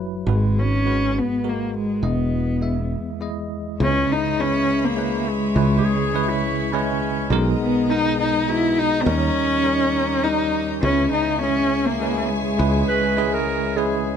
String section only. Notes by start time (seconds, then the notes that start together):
3.79 G#4 C#5 E5 B5
5.57 C#6
7.30 B3 G#4 D#5 A#5
9.05 G4 C#5
10.83 G#4 C#5 E5 G#5